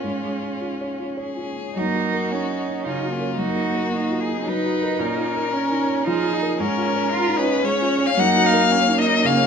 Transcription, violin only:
Already playing: F4
1.20 G#4
1.77 F#4
2.87 F4
3.39 F#4
4.21 G#4
4.48 B4
5.01 A#4
6.07 G#4
6.60 A#4
7.39 B4
7.65 C#5
8.06 F5
8.20 F#5
8.46 F5
8.98 D#5
9.26 F5

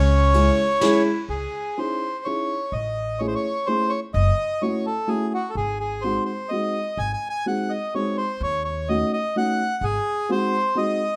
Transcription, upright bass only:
Already playing: C#2
1.29 C#2
2.72 A1
4.14 F#1
5.55 G#1
6.97 G#1
8.41 D#2
9.81 G#1

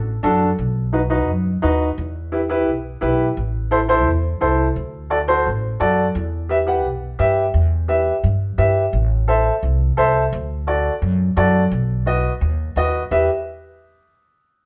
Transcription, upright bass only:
Already playing: A1
0.24 F#2
0.59 B1
1.28 F#2
1.63 D#2
1.98 E2
2.67 B1
3.02 B1
3.37 A1
4.07 E2
4.42 C2
4.76 D2
5.46 A1
5.81 F#2
6.15 E2
6.84 B1
7.19 G2
7.54 E2
8.24 G2
8.58 G2
8.93 A1
9.63 C2
9.98 C2
10.32 D2
11.02 F#2
11.37 F#2
11.71 B1
12.41 D#2
12.76 D#2
13.11 E2

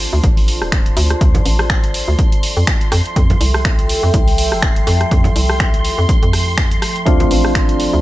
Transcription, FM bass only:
0.13 D2
0.24 A1
0.62 D1
0.97 D2
1.21 D2
1.46 A1
2.08 D2
2.57 F2
2.92 F2
3.16 F2
3.41 C2
4.03 F2
4.14 C2
4.52 F1
4.87 F2
5.11 F2
5.36 C2
5.98 F2
6.23 F2
7.06 D2
7.31 A1
7.93 D2

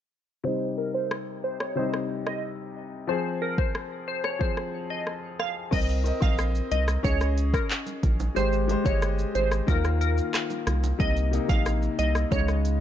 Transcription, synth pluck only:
0.45 C5
0.78 A#4
0.94 C5
1.44 C5
1.60 C#5
1.77 C5
2.26 D#5
3.09 C5
3.42 A#4
3.58 C5
4.08 C5
4.24 C#5
4.41 C5
4.90 D#5
5.40 F5
5.73 D#5
6.22 F5
6.72 D#5
7.05 C#5
7.54 A#4
8.36 C5
8.86 C#5
9.35 C5
9.68 A#4
10.01 A#4
11.00 D#5
11.49 F5
11.99 D#5
12.32 C#5

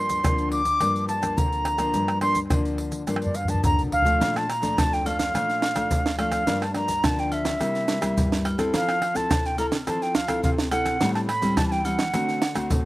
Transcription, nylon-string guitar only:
Already playing: G2 F3 A#3 D4
0.23 D3 F3 A#3 D4
0.80 G2 F3 A#3 D4
1.22 F3 A#3 D4
1.37 D3
1.78 F3 A#3 D4
1.93 G2
2.21 F3 A#3 D4
2.50 D3 F3 A#3 D4
3.07 G2 F3 A#3 D4
3.48 F3 A#3 D4
3.63 D3
4.05 F3 A3 D4
4.20 A#2
4.62 F3 A3 D4
4.77 F2
5.05 F3 A3 D4
5.34 A#2 F3 A3 D4
5.75 F3 A3 D4
5.91 F2
6.18 F3 A3 D4
6.47 G2 F3 A#3 D4
6.75 F3 A#3 D4
7.03 D3 F3 A#3 D4
7.60 C3 G3 A#3 E4
7.88 G3 A#3 E4
8.01 G3 A#3 E4
8.17 G2
8.58 C4 E4 A4
8.73 F3
9.14 C4 E4 A4
9.58 C4 E4 A4
9.87 F3 C4 E4 A4
10.28 C4 E4 A4
10.43 C3
10.71 C4 E4 A4
11.00 A2 G3 C4 E4
11.42 G3 C4 E4
11.57 E3
11.85 G3 C4 E4
12.13 D3 A3 C4 F#4
12.55 A3 C4 F#4
12.71 A2

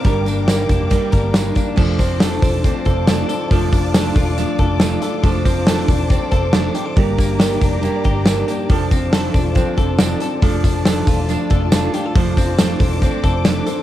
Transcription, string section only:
Already playing: A#4 D6
0.04 D5 G5
1.79 F4 C5 A5 D6
3.51 D5
5.25 C5 A5
6.98 G4 D5 A#5
8.69 F4 C5 A5
10.42 F4 D5
12.17 C5 D6

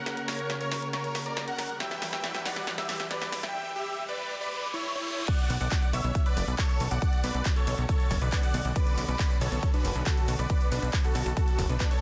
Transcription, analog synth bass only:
5.50 B1
5.61 B1
5.93 B1
6.04 B1
6.37 F#1
6.48 B1
6.80 B1
6.91 B1
7.24 B1
7.35 B1
7.67 B1
7.78 B1
8.11 F#1
8.21 B1
8.54 B1
8.65 B1
8.98 B1
9.08 B1
9.41 B1
9.52 B1
9.85 F#1
9.95 B1
10.28 B1
10.39 B1
10.72 B1
10.82 B1
11.15 B1
11.26 B1
11.59 F#1
11.69 B1

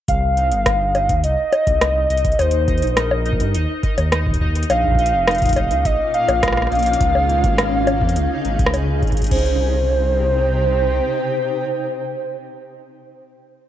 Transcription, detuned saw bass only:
0.08 C2
0.52 G1
1.09 D#2
1.24 C2
1.67 C2
2.10 C2
2.39 D#2
2.82 A#1
3.40 G2
3.55 D#2
3.98 D#2
4.41 D#2
4.70 A#1
5.13 F1
5.71 C#2
5.85 A#1
6.29 A#1
6.72 A#1
7.01 C#2
7.44 G#1
8.02 F2
8.16 C#2
8.45 G#1
8.59 C#2
9.03 G#1
9.31 C2

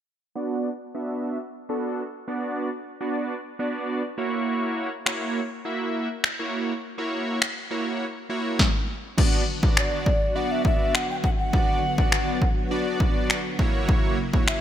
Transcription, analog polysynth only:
0.35 B3 D4 F#4 D5
0.95 B3 D4 F#4 E5
1.69 B3 D4 F#4 A4
2.28 B3 D4 F#4 D5
3.01 B3 D4 F#4 D5
3.59 B3 D4 F#4 D5
4.18 A#3 E4 F#4 C#5
5.06 A#3 E4 F#4 C#5
5.65 A#3 E4 F#4 E5
6.39 A#3 E4 F#4 C#5
6.98 A#3 E4 F#4 C#5
7.71 A#3 E4 F#4 C#5
8.29 A#3 E4 F#4 C#5
9.17 B3 D4 F#4 D5
9.63 B3 D4 F#4 D5
10.35 B3 D4 F#4 D5
11.53 B3 D4 F#4 D5
11.98 B3 D4 F#4 D5
12.71 B3 D4 F#4 D5
13.59 A#3 E4 F#4 C#5
14.33 A#3 E4 F#4 C#5

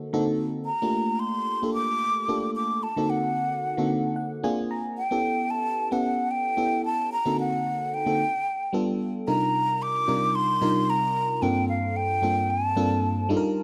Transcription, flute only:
0.66 A#5
1.19 C6
1.74 D6
2.56 D6
2.83 A5
3.10 F#5
4.98 G5
5.50 A5
5.92 F#5
6.31 G5
6.85 A5
7.12 A#5
7.40 F#5
7.94 G5
9.28 A#5
9.82 D6
10.35 C6
10.90 A#5
11.42 G5
11.69 F5
11.96 G5
12.50 A5

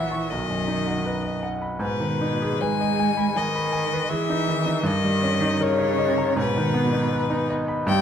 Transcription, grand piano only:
Already playing: A#1 A#2 E4 F#4 C#5 E5 F#5
0.12 C#6
0.32 B1
0.50 F#2
0.68 D#4
0.87 F#4
1.06 B4
1.23 D#5
1.43 F#5
1.62 B5
1.79 G#2
2.00 D#3
2.21 D#4
2.42 G#4
2.62 B4
2.81 D#5
2.99 G#5
3.17 B5
3.36 G#5
3.55 B5
3.72 G#5
3.93 B4
4.11 G#4
4.30 D#4
4.48 D#3
4.66 D#4
4.83 G2
5.05 G3
5.23 C#4
5.41 D#4
5.61 A#4
5.78 C#5
5.99 D#5
6.18 A#5
6.36 G#2
6.57 D#3
6.74 B3
6.92 D#4
7.13 B4
7.30 D#4
7.50 D#5
7.68 B5
7.87 G2

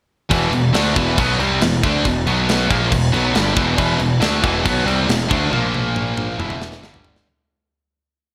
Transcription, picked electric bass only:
0.30 E1
0.51 E1
0.73 D2
0.96 E1
1.18 B1
1.39 C2
1.61 E1
1.83 D2
2.05 E1
2.26 B1
2.70 A#1
2.92 E1
3.13 B1
3.35 G1
3.57 E1
3.78 E1
3.99 E1
4.21 D2
4.44 E1
4.66 B1
4.85 C2
5.07 E1
5.31 D2
5.51 A#1
6.38 E1
6.81 G1

